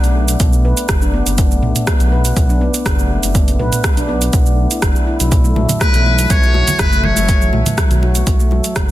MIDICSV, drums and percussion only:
0, 0, Header, 1, 2, 480
1, 0, Start_track
1, 0, Key_signature, 2, "minor"
1, 0, Tempo, 491803
1, 1350, Time_signature, 4, 2, 24, 8
1, 8697, End_track
2, 0, Start_track
2, 0, Title_t, "Drums"
2, 36, Note_on_c, 9, 42, 29
2, 37, Note_on_c, 9, 82, 38
2, 134, Note_off_c, 9, 42, 0
2, 134, Note_off_c, 9, 82, 0
2, 276, Note_on_c, 9, 42, 44
2, 277, Note_on_c, 9, 82, 83
2, 374, Note_off_c, 9, 42, 0
2, 374, Note_off_c, 9, 82, 0
2, 389, Note_on_c, 9, 42, 54
2, 390, Note_on_c, 9, 82, 67
2, 391, Note_on_c, 9, 36, 111
2, 487, Note_off_c, 9, 42, 0
2, 487, Note_off_c, 9, 82, 0
2, 489, Note_off_c, 9, 36, 0
2, 515, Note_on_c, 9, 82, 40
2, 613, Note_off_c, 9, 82, 0
2, 754, Note_on_c, 9, 42, 43
2, 754, Note_on_c, 9, 82, 77
2, 851, Note_off_c, 9, 42, 0
2, 851, Note_off_c, 9, 82, 0
2, 867, Note_on_c, 9, 37, 106
2, 867, Note_on_c, 9, 42, 54
2, 867, Note_on_c, 9, 82, 66
2, 871, Note_on_c, 9, 36, 116
2, 964, Note_off_c, 9, 37, 0
2, 964, Note_off_c, 9, 42, 0
2, 965, Note_off_c, 9, 82, 0
2, 968, Note_off_c, 9, 36, 0
2, 994, Note_on_c, 9, 82, 41
2, 1092, Note_off_c, 9, 82, 0
2, 1235, Note_on_c, 9, 42, 42
2, 1235, Note_on_c, 9, 82, 84
2, 1332, Note_off_c, 9, 42, 0
2, 1333, Note_off_c, 9, 82, 0
2, 1347, Note_on_c, 9, 42, 55
2, 1348, Note_on_c, 9, 82, 73
2, 1350, Note_on_c, 9, 36, 122
2, 1445, Note_off_c, 9, 42, 0
2, 1445, Note_off_c, 9, 82, 0
2, 1447, Note_off_c, 9, 36, 0
2, 1477, Note_on_c, 9, 82, 40
2, 1574, Note_off_c, 9, 82, 0
2, 1587, Note_on_c, 9, 45, 90
2, 1685, Note_off_c, 9, 45, 0
2, 1715, Note_on_c, 9, 42, 40
2, 1715, Note_on_c, 9, 45, 93
2, 1716, Note_on_c, 9, 82, 87
2, 1813, Note_off_c, 9, 42, 0
2, 1813, Note_off_c, 9, 45, 0
2, 1813, Note_off_c, 9, 82, 0
2, 1828, Note_on_c, 9, 37, 113
2, 1828, Note_on_c, 9, 42, 55
2, 1828, Note_on_c, 9, 82, 67
2, 1830, Note_on_c, 9, 36, 125
2, 1926, Note_off_c, 9, 37, 0
2, 1926, Note_off_c, 9, 42, 0
2, 1926, Note_off_c, 9, 82, 0
2, 1927, Note_off_c, 9, 36, 0
2, 1954, Note_on_c, 9, 42, 29
2, 1954, Note_on_c, 9, 82, 40
2, 2052, Note_off_c, 9, 42, 0
2, 2052, Note_off_c, 9, 82, 0
2, 2194, Note_on_c, 9, 42, 41
2, 2195, Note_on_c, 9, 82, 80
2, 2292, Note_off_c, 9, 42, 0
2, 2292, Note_off_c, 9, 82, 0
2, 2309, Note_on_c, 9, 36, 114
2, 2309, Note_on_c, 9, 42, 53
2, 2309, Note_on_c, 9, 82, 70
2, 2407, Note_off_c, 9, 36, 0
2, 2407, Note_off_c, 9, 42, 0
2, 2407, Note_off_c, 9, 82, 0
2, 2435, Note_on_c, 9, 82, 38
2, 2533, Note_off_c, 9, 82, 0
2, 2675, Note_on_c, 9, 42, 41
2, 2676, Note_on_c, 9, 82, 81
2, 2773, Note_off_c, 9, 42, 0
2, 2773, Note_off_c, 9, 82, 0
2, 2789, Note_on_c, 9, 36, 121
2, 2791, Note_on_c, 9, 37, 105
2, 2791, Note_on_c, 9, 42, 55
2, 2792, Note_on_c, 9, 82, 69
2, 2887, Note_off_c, 9, 36, 0
2, 2889, Note_off_c, 9, 37, 0
2, 2889, Note_off_c, 9, 42, 0
2, 2889, Note_off_c, 9, 82, 0
2, 2916, Note_on_c, 9, 82, 39
2, 3014, Note_off_c, 9, 82, 0
2, 3155, Note_on_c, 9, 42, 42
2, 3156, Note_on_c, 9, 82, 83
2, 3253, Note_off_c, 9, 42, 0
2, 3253, Note_off_c, 9, 82, 0
2, 3269, Note_on_c, 9, 36, 123
2, 3269, Note_on_c, 9, 42, 58
2, 3269, Note_on_c, 9, 82, 71
2, 3366, Note_off_c, 9, 36, 0
2, 3366, Note_off_c, 9, 42, 0
2, 3367, Note_off_c, 9, 82, 0
2, 3396, Note_on_c, 9, 42, 29
2, 3396, Note_on_c, 9, 82, 37
2, 3493, Note_off_c, 9, 42, 0
2, 3493, Note_off_c, 9, 82, 0
2, 3508, Note_on_c, 9, 45, 88
2, 3605, Note_off_c, 9, 45, 0
2, 3636, Note_on_c, 9, 42, 40
2, 3636, Note_on_c, 9, 45, 97
2, 3636, Note_on_c, 9, 82, 83
2, 3734, Note_off_c, 9, 42, 0
2, 3734, Note_off_c, 9, 45, 0
2, 3734, Note_off_c, 9, 82, 0
2, 3749, Note_on_c, 9, 36, 126
2, 3749, Note_on_c, 9, 37, 108
2, 3749, Note_on_c, 9, 42, 54
2, 3749, Note_on_c, 9, 82, 68
2, 3846, Note_off_c, 9, 37, 0
2, 3846, Note_off_c, 9, 42, 0
2, 3846, Note_off_c, 9, 82, 0
2, 3847, Note_off_c, 9, 36, 0
2, 3877, Note_on_c, 9, 42, 29
2, 3877, Note_on_c, 9, 82, 38
2, 3974, Note_off_c, 9, 42, 0
2, 3975, Note_off_c, 9, 82, 0
2, 4115, Note_on_c, 9, 42, 42
2, 4115, Note_on_c, 9, 82, 82
2, 4213, Note_off_c, 9, 42, 0
2, 4213, Note_off_c, 9, 82, 0
2, 4228, Note_on_c, 9, 42, 53
2, 4228, Note_on_c, 9, 82, 68
2, 4229, Note_on_c, 9, 36, 117
2, 4325, Note_off_c, 9, 42, 0
2, 4326, Note_off_c, 9, 82, 0
2, 4327, Note_off_c, 9, 36, 0
2, 4355, Note_on_c, 9, 82, 41
2, 4452, Note_off_c, 9, 82, 0
2, 4595, Note_on_c, 9, 42, 44
2, 4595, Note_on_c, 9, 82, 80
2, 4693, Note_off_c, 9, 42, 0
2, 4693, Note_off_c, 9, 82, 0
2, 4707, Note_on_c, 9, 37, 103
2, 4707, Note_on_c, 9, 42, 55
2, 4708, Note_on_c, 9, 82, 66
2, 4709, Note_on_c, 9, 36, 112
2, 4805, Note_off_c, 9, 37, 0
2, 4805, Note_off_c, 9, 42, 0
2, 4805, Note_off_c, 9, 82, 0
2, 4807, Note_off_c, 9, 36, 0
2, 4837, Note_on_c, 9, 82, 40
2, 4935, Note_off_c, 9, 82, 0
2, 5076, Note_on_c, 9, 42, 45
2, 5077, Note_on_c, 9, 82, 83
2, 5174, Note_off_c, 9, 42, 0
2, 5174, Note_off_c, 9, 82, 0
2, 5187, Note_on_c, 9, 62, 52
2, 5190, Note_on_c, 9, 36, 117
2, 5191, Note_on_c, 9, 42, 55
2, 5191, Note_on_c, 9, 82, 66
2, 5284, Note_off_c, 9, 62, 0
2, 5288, Note_off_c, 9, 36, 0
2, 5288, Note_off_c, 9, 42, 0
2, 5289, Note_off_c, 9, 82, 0
2, 5316, Note_on_c, 9, 82, 37
2, 5414, Note_off_c, 9, 82, 0
2, 5429, Note_on_c, 9, 45, 91
2, 5429, Note_on_c, 9, 63, 96
2, 5526, Note_off_c, 9, 45, 0
2, 5527, Note_off_c, 9, 63, 0
2, 5550, Note_on_c, 9, 64, 80
2, 5557, Note_on_c, 9, 42, 47
2, 5557, Note_on_c, 9, 45, 98
2, 5557, Note_on_c, 9, 62, 35
2, 5557, Note_on_c, 9, 82, 81
2, 5648, Note_off_c, 9, 64, 0
2, 5654, Note_off_c, 9, 42, 0
2, 5654, Note_off_c, 9, 45, 0
2, 5654, Note_off_c, 9, 62, 0
2, 5655, Note_off_c, 9, 82, 0
2, 5670, Note_on_c, 9, 36, 124
2, 5671, Note_on_c, 9, 37, 99
2, 5671, Note_on_c, 9, 42, 54
2, 5671, Note_on_c, 9, 82, 68
2, 5768, Note_off_c, 9, 36, 0
2, 5768, Note_off_c, 9, 37, 0
2, 5768, Note_off_c, 9, 42, 0
2, 5769, Note_off_c, 9, 82, 0
2, 5797, Note_on_c, 9, 42, 31
2, 5797, Note_on_c, 9, 82, 37
2, 5894, Note_off_c, 9, 42, 0
2, 5895, Note_off_c, 9, 82, 0
2, 5916, Note_on_c, 9, 62, 51
2, 6014, Note_off_c, 9, 62, 0
2, 6037, Note_on_c, 9, 63, 61
2, 6038, Note_on_c, 9, 42, 44
2, 6038, Note_on_c, 9, 82, 83
2, 6135, Note_off_c, 9, 42, 0
2, 6135, Note_off_c, 9, 63, 0
2, 6136, Note_off_c, 9, 82, 0
2, 6150, Note_on_c, 9, 42, 55
2, 6151, Note_on_c, 9, 36, 116
2, 6151, Note_on_c, 9, 82, 65
2, 6248, Note_off_c, 9, 42, 0
2, 6248, Note_off_c, 9, 82, 0
2, 6249, Note_off_c, 9, 36, 0
2, 6276, Note_on_c, 9, 82, 39
2, 6374, Note_off_c, 9, 82, 0
2, 6384, Note_on_c, 9, 63, 100
2, 6393, Note_on_c, 9, 62, 32
2, 6482, Note_off_c, 9, 63, 0
2, 6491, Note_off_c, 9, 62, 0
2, 6516, Note_on_c, 9, 42, 46
2, 6516, Note_on_c, 9, 82, 80
2, 6518, Note_on_c, 9, 64, 87
2, 6613, Note_off_c, 9, 42, 0
2, 6614, Note_off_c, 9, 82, 0
2, 6616, Note_off_c, 9, 64, 0
2, 6630, Note_on_c, 9, 37, 100
2, 6630, Note_on_c, 9, 42, 55
2, 6631, Note_on_c, 9, 36, 113
2, 6631, Note_on_c, 9, 82, 65
2, 6728, Note_off_c, 9, 37, 0
2, 6728, Note_off_c, 9, 42, 0
2, 6728, Note_off_c, 9, 82, 0
2, 6729, Note_off_c, 9, 36, 0
2, 6757, Note_on_c, 9, 82, 40
2, 6762, Note_on_c, 9, 62, 45
2, 6854, Note_off_c, 9, 82, 0
2, 6860, Note_off_c, 9, 62, 0
2, 6866, Note_on_c, 9, 63, 103
2, 6867, Note_on_c, 9, 64, 83
2, 6964, Note_off_c, 9, 63, 0
2, 6965, Note_off_c, 9, 64, 0
2, 6992, Note_on_c, 9, 63, 94
2, 6997, Note_on_c, 9, 42, 45
2, 6997, Note_on_c, 9, 82, 80
2, 7090, Note_off_c, 9, 63, 0
2, 7094, Note_off_c, 9, 42, 0
2, 7095, Note_off_c, 9, 82, 0
2, 7111, Note_on_c, 9, 36, 108
2, 7111, Note_on_c, 9, 42, 61
2, 7112, Note_on_c, 9, 82, 63
2, 7116, Note_on_c, 9, 62, 48
2, 7209, Note_off_c, 9, 36, 0
2, 7209, Note_off_c, 9, 42, 0
2, 7209, Note_off_c, 9, 82, 0
2, 7214, Note_off_c, 9, 62, 0
2, 7237, Note_on_c, 9, 82, 37
2, 7335, Note_off_c, 9, 82, 0
2, 7347, Note_on_c, 9, 63, 90
2, 7351, Note_on_c, 9, 45, 95
2, 7444, Note_off_c, 9, 63, 0
2, 7449, Note_off_c, 9, 45, 0
2, 7477, Note_on_c, 9, 64, 80
2, 7479, Note_on_c, 9, 42, 46
2, 7479, Note_on_c, 9, 45, 96
2, 7479, Note_on_c, 9, 82, 74
2, 7480, Note_on_c, 9, 62, 41
2, 7575, Note_off_c, 9, 64, 0
2, 7577, Note_off_c, 9, 42, 0
2, 7577, Note_off_c, 9, 45, 0
2, 7577, Note_off_c, 9, 82, 0
2, 7578, Note_off_c, 9, 62, 0
2, 7591, Note_on_c, 9, 36, 111
2, 7592, Note_on_c, 9, 37, 102
2, 7592, Note_on_c, 9, 42, 60
2, 7592, Note_on_c, 9, 82, 68
2, 7688, Note_off_c, 9, 36, 0
2, 7690, Note_off_c, 9, 37, 0
2, 7690, Note_off_c, 9, 42, 0
2, 7690, Note_off_c, 9, 82, 0
2, 7718, Note_on_c, 9, 42, 30
2, 7718, Note_on_c, 9, 82, 38
2, 7721, Note_on_c, 9, 64, 76
2, 7815, Note_off_c, 9, 42, 0
2, 7815, Note_off_c, 9, 82, 0
2, 7818, Note_off_c, 9, 64, 0
2, 7835, Note_on_c, 9, 62, 52
2, 7932, Note_off_c, 9, 62, 0
2, 7955, Note_on_c, 9, 42, 47
2, 7955, Note_on_c, 9, 82, 80
2, 7957, Note_on_c, 9, 63, 60
2, 8052, Note_off_c, 9, 42, 0
2, 8053, Note_off_c, 9, 82, 0
2, 8054, Note_off_c, 9, 63, 0
2, 8070, Note_on_c, 9, 42, 59
2, 8070, Note_on_c, 9, 82, 62
2, 8071, Note_on_c, 9, 36, 110
2, 8168, Note_off_c, 9, 36, 0
2, 8168, Note_off_c, 9, 42, 0
2, 8168, Note_off_c, 9, 82, 0
2, 8196, Note_on_c, 9, 82, 38
2, 8293, Note_off_c, 9, 82, 0
2, 8305, Note_on_c, 9, 62, 37
2, 8314, Note_on_c, 9, 63, 95
2, 8403, Note_off_c, 9, 62, 0
2, 8411, Note_off_c, 9, 63, 0
2, 8434, Note_on_c, 9, 42, 47
2, 8434, Note_on_c, 9, 82, 76
2, 8532, Note_off_c, 9, 42, 0
2, 8532, Note_off_c, 9, 82, 0
2, 8549, Note_on_c, 9, 37, 99
2, 8549, Note_on_c, 9, 42, 60
2, 8549, Note_on_c, 9, 82, 60
2, 8550, Note_on_c, 9, 36, 106
2, 8646, Note_off_c, 9, 37, 0
2, 8646, Note_off_c, 9, 42, 0
2, 8647, Note_off_c, 9, 82, 0
2, 8648, Note_off_c, 9, 36, 0
2, 8697, End_track
0, 0, End_of_file